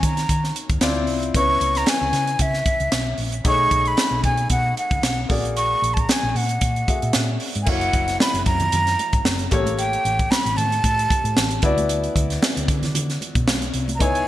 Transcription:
Already playing: A#3 D#4 F#4 C#5
0.03 D#3 A#5, kick, closed hi-hat
0.17 snare, closed hi-hat
0.29 D#3, kick, closed hi-hat
0.44 snare
0.56 closed hi-hat
0.69 D#2, kick, closed hi-hat
0.81 D2 C4 E4 F4 D5, snare, closed hi-hat
1.07 C2, open hi-hat
1.23 closed hi-hat
1.34 C#2 B3 C#4 E4 C#5 C#6, kick, closed hi-hat
1.61 C#2, closed hi-hat
1.75 A#5, snare, closed hi-hat
1.86 G#5, snare, closed hi-hat
2.01 C#2
2.13 C#3, snare, closed hi-hat
2.27 closed hi-hat
2.39 C#3 E5, kick, closed hi-hat
2.54 snare
2.66 kick, closed hi-hat
2.80 C#2, closed hi-hat
2.92 B1, snare, closed hi-hat
3.18 A#1, open hi-hat
3.32 closed hi-hat
3.44 B1 A3 D#4 G#4 C#5 C#6, kick, closed hi-hat
3.71 B1, kick, closed hi-hat
3.85 B5, closed hi-hat
3.97 snare, closed hi-hat
4.11 B1
4.24 B2 G#5, kick, closed hi-hat
4.37 closed hi-hat
4.50 B2 F#5, kick, closed hi-hat
4.77 F#5, closed hi-hat
4.91 C#2, kick, closed hi-hat
5.03 B1, snare, closed hi-hat
5.29 A#1 A#3 F#4 G#4 D5, kick, open hi-hat
5.45 closed hi-hat
5.57 C#6, closed hi-hat
5.82 A#1, closed hi-hat
5.94 A5, kick, closed hi-hat
6.00 A#5
6.09 G#5, snare, closed hi-hat
6.23 A#1
6.30 G#5
6.35 A#2 F#5, open hi-hat
6.49 closed hi-hat
6.61 A#2, kick, closed hi-hat
6.76 closed hi-hat
6.88 A#3 F#4 G#4 E5, kick, closed hi-hat
7.02 A#2, closed hi-hat
7.13 A#2, snare, closed hi-hat
7.40 open hi-hat
7.55 G#2, closed hi-hat
7.63 A#3 G#5, crash
7.67 F#1 E4 F#4 C#5 F#5, kick
7.81 closed hi-hat
7.93 F#1, kick, closed hi-hat
8.08 snare, closed hi-hat
8.20 B5, snare, high conga
8.34 F#1, closed hi-hat
8.46 F#2 A#5, kick, closed hi-hat
8.60 closed hi-hat, low conga
8.72 F#2, closed hi-hat, muted conga, low conga
8.87 snare, closed hi-hat
8.99 closed hi-hat, muted conga
9.13 G#1, kick, closed hi-hat
9.25 F#1, snare, high conga
9.39 closed hi-hat
9.51 A1 A#3 G4 A4 C#5, kick, closed hi-hat
9.66 closed hi-hat, high conga
9.77 G5, closed hi-hat, muted conga
9.93 closed hi-hat
10.05 A1, closed hi-hat
10.19 kick, closed hi-hat
10.31 B5, snare, high conga
10.45 A1, closed hi-hat
10.57 A2 A5, closed hi-hat, low conga
10.72 closed hi-hat
10.84 A2, kick, closed hi-hat, muted conga
10.99 closed hi-hat
11.10 kick, closed hi-hat, muted conga
11.24 A2, closed hi-hat
11.36 A1, snare, high conga
11.51 closed hi-hat
11.62 D2 B3 E4 F#4 D5, kick, closed hi-hat
11.77 closed hi-hat, high conga
11.89 closed hi-hat
12.04 closed hi-hat
12.16 D2, kick, closed hi-hat
12.30 snare, closed hi-hat
12.42 snare, high conga
12.57 D2, closed hi-hat
12.68 D3, kick, closed hi-hat
12.83 snare, closed hi-hat, low conga
12.94 D3, closed hi-hat, muted conga, low conga
13.10 snare, closed hi-hat
13.21 closed hi-hat, muted conga
13.35 B2, kick, closed hi-hat
13.47 B1, snare, high conga
13.62 closed hi-hat
13.74 C2, closed hi-hat
13.88 closed hi-hat, high conga
13.95 B3 A#5
14.00 C#2 D#4 E4 C#5 G#5, kick, closed hi-hat
14.15 closed hi-hat

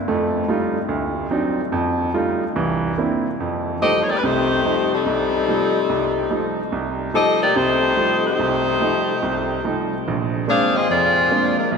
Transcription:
0.08 F2 A3
0.48 G3 A3 D#4 F4
0.89 D2
1.31 F#3 C4 D4 D#4
1.72 F2
2.14 G3 A3 D#4 F4
2.56 C2 E3
2.98 A#3 C4 D4 E4
3.40 F2
3.81 F3 G3 A3 C4 D#4 G4 A4 D#5
4.02 C#5
4.10 A#3 D#4 G4 D5
4.18 B4
4.23 C2 C3 A3 D#4 G4 C5
4.65 F3 G3 A3 D#4
4.94 G3 C4 D#4 A4
5.06 C2
5.48 F3 G3 A3 D#4
5.89 C2
6.30 F3 G3 A3 D#4
6.72 C2
7.14 F3 G3 A3 C4 D#4 G4 A4 D#5
7.42 A#3 D#4 G4 D5
7.56 C2 C3 A3 D#4 G4 C5
7.97 F3 G3 A3 D#4
8.26 A3 D#4 G4 C5
8.39 C2 C3
8.80 F3 G3 A3 D#4
9.22 C2 C3
9.64 F3 G3 A3 D#4
10.08 A#1
10.48 G#3 A#3 C4 D4 G#4 C5 F5
10.76 C4 F4 G#4 D#5
10.90 F1 C4 F4 G#4 D5
11.31 G#3 A#3 C4 D4
11.59 G#3 D4 F4 A#4
11.72 B1

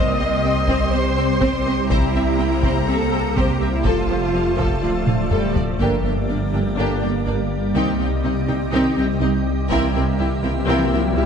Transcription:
Already playing: C2 G3 C4 G4 C5 D#5 C6
0.20 C4 D#5
0.44 C4 G5
0.68 C4 C5, taiko
0.93 C4 C5 D#5
1.17 C4 G5
1.41 C4 C5, taiko
1.66 C4 D#5
1.90 A#3 C4 E4 C5 A#5, taiko
2.14 C4 E5
2.39 C4 G5
2.63 C4 C5, taiko
2.88 C4 A4 E5
3.12 C4 G5
3.36 C4 G4 C5, taiko
3.61 C4 E5
3.74 E4
3.85 F1 F3 A3 F4 A4 A5, taiko
4.09 F3 C5
4.34 F3 F5
4.57 F3 A4, taiko
4.82 D1 D3 F4 D5
5.07 D3 F5, taiko mid
5.30 G3 A4, taiko low-mid
5.55 F3 D5, taiko low
5.79 G1 G2 D3 G3 A#3 D4 G4 D5 G5, taiko
6.04 G1 G2 A#3 D4 G4 G5
6.28 G1 G2 A#3 D4 D5
6.53 G1 G2 A#3 D4 G4 G5
6.77 G1 G2 D3 A#3 D4 G4 G5
7.02 G1 G2 A#3 D4 G4 G5
7.26 G1 G2 A#3 D4 D5
7.74 C2 C3 D#3 C4 D#4 G4 D#5 G5
7.99 C2 C3 C4 D#4 G4 G5
8.24 C2 C3 C4 D#4 D#5
8.48 C2 C3 C4 D#4 G4 G5
8.72 C2 C3 D#3 C4 D#4 G4 G5
8.97 C2 C3 C4 D#4 G4 G5
9.21 C2 C3 C4 D#4 D#5
9.69 C2 C3 E3 A#3 C4 E4 A#4 E5 G5, taiko, riser
9.94 C2 C3 C4 E4 A#4 G5
10.19 C2 C3 C4 E4 G4 E5
10.43 C2 C3 C4 E4 A#4 G5
10.67 C2 C3 E3 A#3 C4 E4 A#4 G5
10.92 C2 C3 C4 E4 A#4 G5
11.16 C2 C3 C4 E4 G4 E5

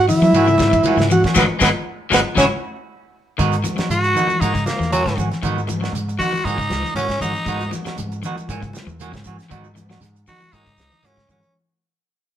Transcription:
0.08 D#3 E4 E5, open hi-hat, low conga, shekere
0.22 E3 F#3, muted clean electric guitar stroke, high conga, shekere
0.33 G#2 E3 A#3 C#4 F#4, ride bell, shekere
0.47 C#3, muted clean electric guitar stroke, high conga, shekere
0.58 G#2, muted clean electric guitar stroke, kick, snare, ride bell, high conga, shekere
0.71 E3, kick, ride bell, shekere
0.83 E3 A#3 C#4, muted fingered electric bass stroke, ride bell, high conga, shekere
0.87 F#4
0.97 G#2 C#3, muted clean electric guitar stroke, snare, shekere
1.10 E3 F#4 F#5, muted clean electric guitar stroke, ride bell, low conga, shekere
1.24 A#3 C#4 F#4, kick, snare, shekere
1.35 G#1 D#3 F#3 G#3 B3 D#4 B4, kick, snare, high conga, shekere
1.59 G#1 D#3 F#3 G#3 B3 D#4, kick, snare, high conga, shekere
1.64 B4
2.10 G#1 D#3 F#3 G#3 B3 D#4, kick, snare, high conga, shekere
2.15 B4
2.36 G#1 C#3 E3 F#3 C#4 E4 F#4, kick, snare, high conga, shekere
2.40 C#5
3.38 G#2 D#3 B3 D#4 F#4, kick, closed hi-hat, shekere
3.52 closed hi-hat, shekere
3.64 E3, muted clean electric guitar stroke, closed hi-hat, high conga, low conga, shekere
3.77 F#3 B3 D#4 F#4, muted fingered electric bass stroke, snare, closed hi-hat, shekere
3.90 G#2 F#4, muted clean electric guitar stroke, closed hi-hat, shekere
4.03 muted clean electric guitar stroke, closed hi-hat, shekere
4.15 D#3 B3 D#4 F#4, closed hi-hat, low conga, shekere
4.27 E3, muted clean electric guitar stroke, closed hi-hat, high conga, shekere
4.41 G#2 E3 A#3 D#4 F#4, muted clean electric guitar stroke, kick, closed hi-hat, shekere
4.54 C#3, muted clean electric guitar stroke, kick, snare, closed hi-hat, shekere
4.66 A#3, muted clean electric guitar stroke, snare, closed hi-hat, high conga, shekere
4.79 E2 E3, snare, shekere
4.91 E3 F#3 A#3 C#4 F#4, closed hi-hat, high conga, shekere
5.06 G#2 C#3, muted clean electric guitar stroke, kick, snare, closed hi-hat, shekere
5.16 D#3 A#3 C#4 F#4, kick, closed hi-hat, low conga, shekere
5.31 muted clean electric guitar stroke, snare, closed hi-hat, shekere
5.42 G#2 D#3 B3 D#4 F#4, kick, closed hi-hat, shekere
5.56 high conga, shekere
5.68 E3, muted clean electric guitar stroke, closed hi-hat, high conga, low conga, shekere
5.81 F#3 B3 D#4 F#4, snare, shekere
5.93 G#2, muted clean electric guitar stroke, closed hi-hat, shekere
6.09 muted clean electric guitar stroke, closed hi-hat, shekere
6.19 D#3 B3 D#4 F#4, kick, open hi-hat, low conga, shekere
6.32 E3, muted clean electric guitar stroke, high conga, shekere
6.45 G#2 E3 A#3 C#4 D#4 F#4, kick, closed hi-hat, shekere
6.57 C#3, kick, closed hi-hat
6.62 shekere
6.70 C#2, muted clean electric guitar stroke, snare, closed hi-hat, high conga, shekere
6.82 E3, snare
6.87 shekere
6.94 G#2 E3 A#3 C#4 F#4, closed hi-hat, high conga, shekere
7.09 muted clean electric guitar stroke, kick, snare, closed hi-hat, shekere
7.20 G#2 D#3 E3 A#3 C#4 D#4 F#4, kick, closed hi-hat, low conga, shekere
7.35 muted clean electric guitar stroke, shekere
7.46 G#2 D#3 B3 D#4 F#4, muted clean electric guitar stroke, kick, closed hi-hat, shekere
7.59 closed hi-hat, high conga, shekere
7.71 E3, muted clean electric guitar stroke, snare, closed hi-hat, high conga, low conga, shekere
7.85 F#3 B3 D#4 F#4, muted fingered electric bass stroke, snare, closed hi-hat, shekere
7.96 G#2, muted clean electric guitar stroke, closed hi-hat, high conga, low conga, shekere
8.12 muted clean electric guitar stroke, closed hi-hat, shekere
8.22 D#3 D#4, closed hi-hat, low conga, shekere
8.26 B3 F#4
8.35 muted clean electric guitar stroke, closed hi-hat, high conga
8.39 shekere
8.49 G#2 E3 A#3 C#4, muted clean electric guitar stroke, kick, closed hi-hat, shekere
8.61 C#3, muted clean electric guitar stroke, kick, closed hi-hat, high conga, shekere
8.73 muted clean electric guitar stroke, snare, closed hi-hat, high conga, shekere
8.87 E2 E3, shekere
9.00 E3 A#3 C#4 F#4, closed hi-hat, high conga, shekere
9.12 G#2 C#3, muted clean electric guitar stroke, kick, snare, closed hi-hat, shekere
9.24 E3 A#3 C#4 F#4, kick, closed hi-hat, low conga, shekere
9.39 snare, closed hi-hat, shekere
9.50 G#2 D#3 B3 D#4 F#4, kick, closed hi-hat, shekere
9.64 high conga, shekere
9.75 E3, muted clean electric guitar stroke, closed hi-hat, high conga, low conga, shekere
9.90 F#3 B3 D#4 F#4, snare, shekere
10.01 G#2, snare, closed hi-hat, shekere
10.16 muted clean electric guitar stroke, closed hi-hat, shekere
10.27 D#3 B3 D#4 F#4, kick, open hi-hat, low conga, shekere
10.40 E3, muted clean electric guitar stroke, high conga, shekere
10.52 G#2 E3 A#3 C#4 D#4 F#4, kick, closed hi-hat, shekere
10.66 C#3, muted clean electric guitar stroke, kick, snare, closed hi-hat, shekere
10.77 C#2, muted clean electric guitar stroke, snare, closed hi-hat, high conga, shekere
10.91 E3, snare, shekere
11.02 G#2 E3 A#3 C#4 F#4, snare, closed hi-hat, high conga, shekere
11.17 C#3, muted clean electric guitar stroke, kick, snare, closed hi-hat, shekere
11.28 G#2 D#3 E3 A#3 C#4 F#4, kick, closed hi-hat, low conga, shekere
11.42 muted clean electric guitar stroke, high conga, shekere

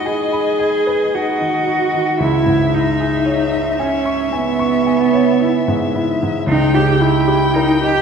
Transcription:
Already playing: G#2 D#3 D#4 G#4 B4 D#5 G#5 B5
0.05 G#4 G#5
0.32 B5
0.59 G#5
0.87 B4
1.14 D#4 F#4
1.41 D#3
1.67 D#4
1.94 D#3
2.19 C#2 E4 E5
2.46 G#2
2.72 D#4 E4
3.00 G#4
3.26 C#5
3.52 E5
3.79 C#4 G#5
4.05 C#6
4.32 B3 G#5
4.59 C#6
4.86 G#5
5.13 C#5
5.41 E4
5.68 G#2
5.95 E4
6.23 G#2
6.47 C#2 D#4 G5
6.74 C#3 G4
7.01 D#4 E4
7.28 G4
7.54 D#4 A#4
7.83 G4 D#5

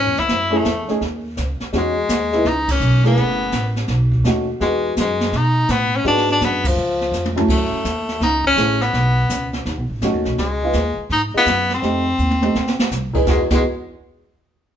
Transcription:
Already playing: C#4
0.06 E2
0.17 C#2 E4, snare
0.28 F#2, brush sweep, kick, snare
0.50 A3 C#4 E4 G#4
0.58 A3
0.65 E2, kick, snare, hi-hat pedal
0.88 A3 C#4 D#4 G#4, muted upright bass stroke, snare
1.01 D#2, brush sweep, kick, snare
1.37 C#2, kick, snare, hi-hat pedal
1.60 muted upright bass stroke, snare
1.73 E2 G#3 C#4 D#4 F#4, brush sweep, kick, snare
1.78 G#3
2.09 D#2, kick, snare, hi-hat pedal
2.32 G#3 B3 D#4 E4, snare
2.45 C#2 D#4, brush sweep, kick, snare
2.68 C#4, kick, ride
2.80 B1, hi-hat pedal
3.03 A3 B3 E4 G#4, snare
3.16 F#1, brush sweep, kick, snare
3.52 A1, kick, snare, hi-hat pedal
3.76 snare
3.88 B1, brush sweep, kick, snare
4.12 kick
4.24 D#2 A3 C#4 D#4 F#4, kick, snare, hi-hat pedal
4.60 E2 G#3 B3 D#4 F#4, brush sweep, kick, snare
4.97 F#2 G#3, kick, snare, hi-hat pedal
5.21 snare
5.33 B2, brush sweep, kick, snare
5.37 D#4
5.68 A2 B3, kick, snare, hi-hat pedal
5.96 C#4
6.04 G#2 G#3 B3 D4 F#4, brush sweep, kick, snare
6.17 snare
6.29 D4, snare
6.40 F#2, kick, snare, hi-hat pedal
6.45 B3
6.64 F3, kick, ride
6.76 C#2, brush sweep
7.01 snare
7.12 F2, snare, hi-hat pedal
7.25 high tom
7.36 F#2 A3 C#4 E4 A4, high tom
7.48 F#2 A3, brush sweep, kick, snare, crash
7.72 muted upright bass stroke
7.84 D#2, kick, snare, hi-hat pedal
8.09 snare
8.20 C#2 D#4, brush sweep, kick, snare
8.44 C#4, kick
8.56 A1 A3 C#4 E4 G#4, kick, snare, hi-hat pedal
8.81 B3, snare
8.93 B1, brush sweep, kick, snare
9.29 C#2, kick, snare, hi-hat pedal
9.53 snare
9.65 D#2, brush sweep, kick, snare
9.77 B1
9.89 A1
10.02 F#2 A3 C#4 D#4 F#4, kick, snare, hi-hat pedal
10.13 D#2
10.25 B1, snare
10.38 C#2 G#3, brush sweep, kick, snare
10.63 G#3 B3 D#4 F4
10.73 D#2, kick, snare, hi-hat pedal
10.97 muted upright bass stroke
11.10 G#2 D#4, brush sweep, kick, snare
11.34 G#3 B3 D#4 F4, muted upright bass stroke
11.46 F#2, kick, snare, hi-hat pedal
11.70 snare
11.74 C4
11.82 F2 A3 C4 D#4 G4, brush sweep, kick, snare
12.19 D#2, hi-hat pedal
12.31 high tom
12.41 A3 C4 D#4 G4, high tom
12.55 D2, snare
12.67 snare
12.79 muted upright bass stroke, snare
12.91 C2, snare, hi-hat pedal
13.14 E2 G#3 B3 D#4 G#4, kick, crash
13.27 E2 G#3 B3 D#4 F#4, kick, snare
13.50 E2 G#3 B3 D#4 F#4, kick, snare, crash
13.55 G#3

